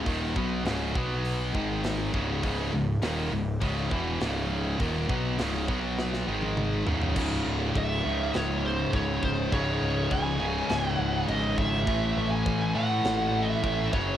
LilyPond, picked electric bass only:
\new Staff \with { instrumentName = "Picked electric bass" } { \clef bass \time 4/4 \key cis \minor \tempo 4 = 102 dis,,8 b,,8 cis,,8 b,,4 gis,,4 cis,,8 | cis,,8 cis,,8 dis,,8 cis,,8 cis,,8 e,,8 cis,,4 | dis,,8 b,,8 cis,,8 b,,4 gis,,4 cis,,8 | cis,,8 cis,,8 cis,,8 cis,8 cis,,4 cis,,8 cis,,8 |
cis,,8 cis,,8 cis,,4 cis,,8 cis,,8 gis,,4 | a,,8 a,,8 a,,8 a,8 a,,4 a,,8 fis,,8 | }